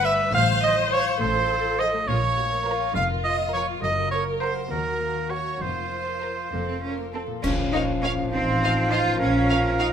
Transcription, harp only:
0.00 0.36 G2 medium
0.00 0.36 D3 medium
0.00 0.36 G3 medium
0.00 0.35 D4 medium
0.00 0.36 B4 medium
0.05 0.36 D5 medium
0.34 2.10 A2 medium
0.50 1.92 A3 medium
0.63 1.78 F3 medium
0.78 1.49 C5 medium
0.92 1.20 F5 medium
1.07 2.10 C6 medium
1.36 1.64 F4 medium
1.50 2.10 C5 medium
1.65 3.23 F4 medium
1.79 2.21 F3 medium
1.93 2.10 A3 medium
2.08 3.85 A#2 medium
2.22 3.52 F3 medium
2.36 3.36 A#3 medium
2.51 3.09 A#4 medium
2.66 2.94 F5 medium
2.81 4.55 A#5 medium
3.10 4.24 A#4 medium
3.24 3.85 F4 medium
3.38 3.66 A#3 medium
3.53 3.85 F3 medium
3.67 4.10 A#3 soft
3.81 4.73 F#2 medium
3.97 4.73 C#3 soft
4.11 4.98 A#3 medium
4.25 5.14 A#4 soft
4.41 5.29 F#5 medium
4.56 5.44 A#5 medium
4.71 5.64 D#3 medium
4.85 5.63 D#4 soft
5.00 5.75 A#3 soft
5.15 6.06 A#4 soft
5.30 5.64 F#5 soft
5.45 6.22 A#5 soft
5.61 6.52 F3 medium
5.76 6.55 A#3 soft
5.92 6.82 F4 soft
6.07 6.56 A#4 soft
6.23 6.56 A#5 soft
6.38 9.93 F5 soft
6.53 9.93 F3 soft
6.68 7.46 A3 soft
6.83 7.34 F4 soft
6.99 7.46 A4 soft
7.14 7.46 C6 soft
7.26 8.26 A#2 medium
7.26 7.46 A5 soft
7.31 8.29 A#3 medium
7.35 8.23 F4 medium
7.40 8.33 A#4 medium
8.15 9.13 A2 medium
8.20 9.16 D#4 medium
8.24 9.09 F4 medium
8.28 9.20 C5 medium
9.02 9.93 A#2 medium
9.06 9.93 C#4 medium
9.11 9.93 F4 medium
9.15 9.93 A#4 medium

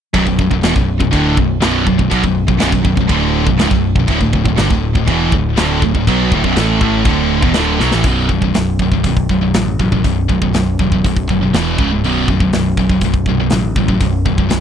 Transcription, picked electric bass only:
0.14 0.26 B0 medium
0.27 0.38 B0 medium
0.39 0.50 B0 medium
0.51 0.62 B0 medium
0.63 0.75 E1 medium
0.75 0.99 B0 medium
1.00 1.12 B0 medium
1.13 1.36 D1 medium
1.37 1.60 B0 medium
1.62 1.85 B0 medium
1.87 1.98 B0 medium
1.99 2.11 B0 medium
2.12 2.23 B1 medium
2.24 2.47 B0 medium
2.48 2.60 B0 medium
2.61 2.72 B0 medium
2.72 2.84 B0 medium
2.84 2.96 B0 medium
2.97 3.09 B0 medium
3.09 3.44 D1 medium
3.47 3.59 B0 medium
3.61 3.70 C#1 medium
3.71 3.95 B0 medium
3.95 4.08 B0 medium
4.08 4.20 D1 medium
4.21 4.33 D1 medium
4.33 4.45 D1 medium
4.46 4.58 D1 medium
4.59 4.70 G1 medium
4.70 4.94 D1 medium
4.95 5.07 D1 medium
5.07 5.31 E1 medium
5.32 5.56 D1 medium
5.58 5.81 D1 medium
5.82 5.94 D1 medium
5.94 6.06 D1 medium
6.07 6.31 B1 medium
6.31 6.43 D1 medium
6.44 6.56 B0 loud
6.57 6.80 A1 medium
6.81 7.05 A1 medium
7.05 7.41 D1 medium
7.42 7.55 E1 medium
7.57 7.80 D1 medium
7.81 7.93 B1 medium
7.94 8.03 A1 medium
8.04 8.27 B0 medium
8.29 8.52 B0 medium
8.56 8.78 B0 medium
8.79 9.02 B0 medium
9.04 9.27 B0 medium
9.29 9.52 B0 medium
9.54 9.77 A1 medium
9.79 10.02 A1 medium
10.04 10.27 B0 medium
10.29 10.51 B0 medium
10.53 10.76 B0 medium
10.79 11.02 E1 medium
11.04 11.26 B0 medium
11.29 11.51 F#1 medium
11.54 11.76 E1 medium
11.78 12.03 C#1 medium
12.03 12.26 B0 medium
12.28 12.50 B0 medium
12.54 12.76 B0 medium
12.77 13.00 B0 medium
13.02 13.24 B0 medium
13.26 13.49 B0 medium
13.52 13.74 A1 medium
13.75 13.98 A1 medium
14.01 14.23 B0 medium
14.26 14.49 B0 medium
14.52 14.60 B0 medium

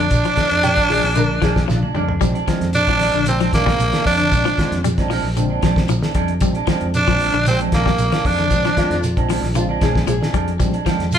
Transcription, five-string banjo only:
0.63 0.70 G4 medium
0.90 1.15 G#4 medium
1.17 1.24 A#4 loud
1.43 1.68 G#4 medium
1.68 1.75 F4 medium
1.96 2.58 D4 medium
8.78 9.55 F4 medium
9.56 9.63 F4 loud
9.83 10.07 G#4 medium
10.08 10.96 G#4 medium

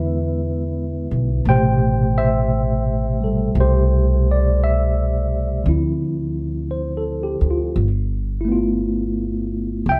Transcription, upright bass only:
0.00 1.06 E2 medium
1.11 1.43 B1 medium
1.45 3.52 A1 medium
3.55 5.62 C2 medium
5.66 7.38 D2 medium
7.41 7.74 D2 medium
7.76 9.82 G1 medium
9.86 10.00 C2 medium

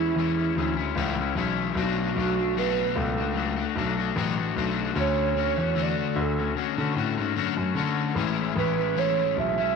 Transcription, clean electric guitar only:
0.00 0.16 G#3 soft
0.00 0.16 C#4 soft
0.00 0.15 E4 medium
0.16 0.38 E3 medium
0.16 0.39 G#3 medium
0.16 0.38 C#4 medium
0.16 0.36 E4 medium
0.38 0.56 G#3 soft
0.38 0.57 C#4 soft
0.38 0.56 E4 medium
0.55 0.77 E3 medium
0.55 0.78 G#3 medium
0.55 0.78 C#4 medium
0.55 0.75 E4 medium
0.77 0.95 G#3 soft
0.77 0.96 C#4 medium
0.77 0.95 E4 medium
0.95 1.17 A2 medium
0.95 1.18 E3 medium
0.95 1.18 G#3 medium
0.95 1.18 C#4 medium
0.95 1.16 E4 loud
1.17 1.35 G#3 soft
1.17 1.36 C#4 soft
1.17 1.36 E4 medium
1.35 1.75 E3 medium
1.35 1.76 G#3 medium
1.35 1.77 C#4 medium
1.35 1.77 E4 medium
1.76 2.16 B2 medium
1.76 2.15 F#3 medium
1.76 2.16 A3 medium
1.76 2.17 D4 medium
1.76 2.17 F#4 medium
2.16 2.38 F#3 medium
2.16 2.39 A3 medium
2.16 2.38 D4 medium
2.16 2.36 F#4 medium
2.37 2.56 A3 soft
2.37 2.56 D4 medium
2.37 2.55 F#4 medium
2.56 3.18 B2 medium
2.56 3.18 F#3 medium
2.56 3.18 A3 medium
2.56 3.17 D4 medium
2.56 3.16 F#4 medium
3.17 3.34 A3 soft
3.17 3.35 D4 medium
3.17 3.35 F#4 medium
3.34 3.57 F#3 medium
3.34 3.58 A3 medium
3.34 3.57 D4 medium
3.34 3.55 F#4 medium
3.56 3.75 A3 medium
3.56 3.76 D4 medium
3.56 3.75 F#4 medium
3.75 3.98 F#3 medium
3.75 3.98 A3 medium
3.75 3.97 D4 medium
3.75 3.96 F#4 medium
3.97 4.16 A3 medium
3.97 4.16 D4 medium
3.97 4.15 F#4 medium
4.16 4.38 B2 medium
4.16 4.38 F#3 medium
4.16 4.39 A3 medium
4.16 4.38 D4 medium
4.16 4.36 F#4 loud
4.37 4.56 D4 soft
4.37 4.55 F#4 medium
4.41 4.55 A3 soft
4.55 4.94 F#3 medium
4.55 4.94 A3 medium
4.55 4.96 D4 medium
4.55 4.96 F#4 medium
4.94 5.34 D3 medium
4.94 5.35 A3 medium
4.94 5.36 C#4 medium
4.94 5.36 F#4 medium
5.35 5.58 D3 medium
5.35 5.58 A3 medium
5.35 5.58 C#4 medium
5.35 5.55 F#4 medium
5.57 5.75 A3 soft
5.57 5.76 C#4 soft
5.57 5.75 F#4 medium
5.75 6.38 D3 medium
5.75 6.38 A3 medium
5.75 6.35 F#4 medium
6.36 6.55 A3 soft
6.36 6.56 C#4 soft
6.36 6.55 F#4 soft
6.54 6.77 D3 medium
6.54 6.78 A3 medium
6.54 6.78 C#4 medium
6.54 6.76 F#4 medium
6.77 6.95 A3 medium
6.77 6.95 C#4 medium
6.77 6.96 F#4 medium
6.94 7.17 D3 medium
6.94 7.18 A3 medium
6.94 7.18 C#4 medium
6.94 7.16 F#4 medium
7.17 7.34 A3 medium
7.17 7.35 C#4 medium
7.17 7.36 F#4 medium
7.35 7.58 D3 medium
7.35 7.58 A3 medium
7.35 7.58 C#4 medium
7.35 7.56 F#4 medium
7.57 7.75 A3 soft
7.57 7.75 C#4 soft
7.57 7.76 F#4 soft
7.74 8.15 D3 medium
7.74 8.16 A3 medium
7.74 8.16 C#4 medium
7.74 8.17 F#4 medium
8.16 8.56 A2 medium
8.16 8.54 E3 medium
8.16 8.56 G#3 medium
8.16 8.56 C#4 medium
8.16 8.57 E4 medium
8.55 8.78 E3 medium
8.55 8.79 G#3 medium
8.55 8.77 C#4 medium
8.55 8.76 E4 medium
8.77 8.95 G#3 soft
8.77 8.96 C#4 soft
8.77 8.96 E4 medium
8.95 9.58 A2 medium
8.95 9.58 E3 medium
8.95 9.59 G#3 medium
8.95 9.59 C#4 medium
8.95 9.57 E4 medium
9.58 9.76 G#3 soft
9.58 9.76 C#4 soft
9.58 9.76 E4 medium

